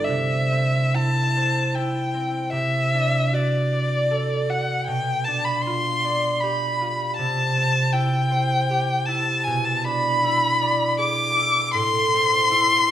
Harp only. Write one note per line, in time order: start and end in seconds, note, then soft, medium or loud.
0.00 0.10 G1 soft
0.00 0.10 G2 medium
0.00 0.10 B3 soft
0.00 0.10 D4 soft
0.00 0.10 D5 soft
0.08 2.51 C3 soft
0.51 2.13 C4 soft
0.95 1.74 E4 soft
1.36 4.90 C5 soft
1.75 2.57 E4 soft
2.14 4.90 C4 soft
2.52 4.89 C3 soft
2.94 5.27 D4 soft
3.33 4.48 F#4 soft
3.73 6.03 D5 soft
4.11 4.90 A4 soft
4.49 4.90 F#4 soft
4.87 7.20 B2 soft
5.28 7.21 D4 soft
5.67 6.80 F4 soft
6.04 7.20 D5 soft
6.43 8.69 G4 soft
6.81 7.21 F4 soft
7.18 9.50 C3 soft
7.55 9.50 C4 soft
7.93 9.07 E4 soft
8.31 9.49 C5 soft
8.70 9.50 G4 soft
9.08 10.22 E4 soft
9.47 11.78 B2 soft
9.85 11.78 D4 soft
10.23 11.35 E4 soft
10.62 11.78 D5 soft
10.98 11.77 G#4 soft
11.36 12.50 E4 soft
11.74 12.91 A2 medium
12.14 12.91 C4 soft
12.51 12.91 E4 soft